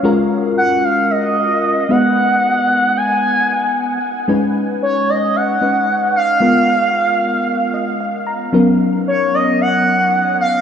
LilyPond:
<<
  \new Staff \with { instrumentName = "Analog synth lead" } { \time 4/4 \key gis \dorian \tempo 4 = 113 r4 fis''8 eis''8 dis''4. fis''8~ | fis''4. gis''2 r8 | r4 cis''8 dis''8 fis''4. eis''8~ | eis''2.~ eis''8 r8 |
r4 cis''8 dis''8 fis''4. eis''8 | }
  \new Staff \with { instrumentName = "FM electric piano" } { \time 4/4 \key gis \dorian << { r1 | r1 | r1 | r2 r8 dis''8 eis''8 ais''8 |
r1 | } \\ { <gis cis' eis' fis' ais'>2.~ <gis cis' eis' fis' ais'>8 <gis b dis' fis' b'>8~ | <gis b dis' fis' b'>2.~ <gis b dis' fis' b'>8 r8 | <gis cis' dis' b'>2~ <gis cis' dis' b'>8 <gis cis' dis' b'>4. | <gis b eis' ais'>1 |
<fis b cis' dis' ais'>1 | } >> }
>>